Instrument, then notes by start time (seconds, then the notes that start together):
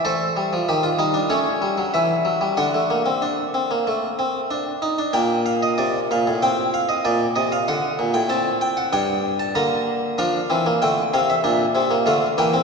harpsichord
0.05 A3 A4 C5
0.37 G3
0.53 F3
0.69 D#3 G4
0.83 F4
0.99 G3 D#4
1.14 D4
1.30 A3 C#4 C#5
1.62 G3
1.78 F#3
1.94 E3 E5
2.25 F#3
2.41 G3
2.57 D3 D4 F#5
2.74 A3
2.90 A#3
3.06 C4
3.22 D4
3.54 C4
3.71 A#3
3.87 A3
4.19 C4
4.51 D4
4.82 D#4
4.98 D4
5.13 A#2 A#3 G5
5.46 F5
5.63 D#5
5.78 C3 D5
6.11 A#2 F5
6.27 A2
6.42 C4 G5
6.74 F5
6.89 D#5
7.05 A#2 D5
7.36 C3 D#5
7.52 F5
7.68 D3 F#5
7.99 A#2
8.14 A2 G5
8.29 C4 A5
8.61 G5
8.77 F#5
8.93 G2 D4 G5
9.39 A5
9.55 D3 A#3 A#5
10.18 F3 D4 F5
10.50 E3 C4
10.66 A#3
10.82 D3 A3 G5
11.14 C3 C4 F5
11.30 E5
11.44 A#2 D4
11.75 C3 C4
11.91 A#3
12.06 D3 A3 F5
12.38 E3 A#3 G5
12.54 C4